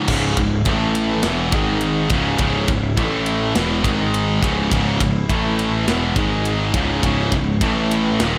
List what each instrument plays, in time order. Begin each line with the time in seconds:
0.08 picked electric bass C#1, distorted electric guitar C#2 G#2 C#3, string section C#3 G#3 E4, kick, crash
0.37 picked electric bass C#1, distorted electric guitar C#2 G#2, kick, ride
0.65 picked electric bass A1, distorted electric guitar A2 E3 A3, string section E3 A3 A4, kick, ride
0.95 ride
1.23 picked electric bass E1, distorted electric guitar E2 B2 E3, string section G#3 E4 C#5, snare, ride
1.52 picked electric bass G#1, distorted electric guitar G#2 D#3 G#3, string section D#4 D#5, kick, ride
1.81 ride
2.09 picked electric bass C#1, distorted electric guitar C#2 G#2 C#3, string section E4 C#5, kick, ride
2.38 picked electric bass C#1, distorted electric guitar C#2 G#2 C#3, kick, ride
2.68 picked electric bass C#1, distorted electric guitar C#2 G#2, kick, ride
2.97 picked electric bass A1, distorted electric guitar A2 E3 A3, string section A3 E5, kick, ride
3.26 ride
3.55 picked electric bass E1, distorted electric guitar E2 B2 E3, string section G#3 E4 C#5, snare, ride
3.84 picked electric bass G#1, distorted electric guitar G#2 D#3 G#3, string section G#3 D#4 D#5, kick, ride
4.14 ride
4.42 picked electric bass C#1, distorted electric guitar C#2 G#2 C#3, string section E4 C#5, kick, ride
4.72 picked electric bass C#1, distorted electric guitar C#2 G#2 C#3, kick, ride
5.00 picked electric bass C#1, distorted electric guitar C#2 G#2, kick, ride
5.29 picked electric bass A1, distorted electric guitar A2 E3 A3, string section A3 E5, kick, ride
5.59 ride
5.86 picked electric bass E1, distorted electric guitar E2 B2 E3, string section G#3 C#5, snare, ride
6.15 picked electric bass G#1, distorted electric guitar G#2 D#3 G#3, string section D#4 D#5, kick, ride
6.45 ride
6.74 picked electric bass C#1, distorted electric guitar C#2 G#2 C#3, string section E4 C#5, kick, ride
7.03 picked electric bass C#1, distorted electric guitar C#2 G#2 C#3, kick, ride
7.32 picked electric bass C#1, distorted electric guitar C#2 G#2, kick, ride
7.61 picked electric bass A1, distorted electric guitar A2 E3 A3, string section A3 E4 E5, kick, ride
7.91 ride
8.20 picked electric bass D#1, distorted electric guitar D#2 A#2 D#3, string section A#3 D#4 D#5, snare, ride